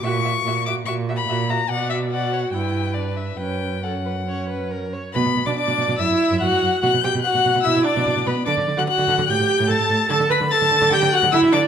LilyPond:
<<
  \new Staff \with { instrumentName = "Violin" } { \time 4/4 \key b \minor \tempo 4 = 144 cis'''4. d'''8 cis'''8. b''8. ais''8 | fis''8 e''8 fis''4 g''4 d''8 e''8 | g''4 fis''2 r4 | b''8. d'''16 d'''4 e'''4 fis'''4 |
fis'''8 g'''8 fis'''4 e'''8 d'''4 b''8 | d'''8. fis'''16 fis'''4 g'''4 a'''4 | a'''8 b'''8 a'''4 g'''8 fis'''8 e'''8 d'''8 | }
  \new Staff \with { instrumentName = "Violin" } { \time 4/4 \key b \minor e''8 e''8 e''8 e''8 e''8 e''8 e''8 e''8 | d''4 d''8 cis''8 b'2 | b'4 a'8 b'8 cis''8 b'8 ais'8 cis''8 | b'8. d''16 d''4 e''4 fis''4 |
fis''8 g''8 fis''4 e''8 d''4 b'8 | d''8. fis''16 fis''4 g''4 a''4 | a''8 b''8 a''4 g''8 fis''8 e''8 d''8 | }
  \new Staff \with { instrumentName = "Viola" } { \time 4/4 \key b \minor fis'8 fis'8 fis'8 fis'8 fis'8 fis'8 fis'8 fis'8 | fis'4 fis'4 e'4 d'4 | cis'4 cis'4 cis'4. r8 | b8. d'16 d'4 e'4 fis'4 |
fis'8 g'8 fis'4 e'8 d'4 b8 | d'8. fis'16 fis'4 g'4 a'4 | a'8 b'8 a'4 g'8 fis'8 e'8 d'8 | }
  \new Staff \with { instrumentName = "Cello" } { \clef bass \time 4/4 \key b \minor ais,4 ais,4 ais,4 ais,4 | b,2 g,2 | fis,2.~ fis,8 r8 | b,16 b,16 b,16 b,16 r16 b,16 b,16 b,16 fis,16 fis,16 r16 fis,16 fis,16 fis,16 fis,16 r16 |
b,16 b,16 b,16 b,16 r16 b,16 b,16 b,16 b,16 b,16 r16 b,16 b,16 b,16 b,16 r16 | d16 d16 d16 d16 r16 d16 d16 d16 a,16 a,16 r16 a,16 a,16 a,16 a,16 r16 | d16 d16 d16 d16 r16 d16 d16 d16 d16 d16 r16 d16 d16 d16 d16 r16 | }
>>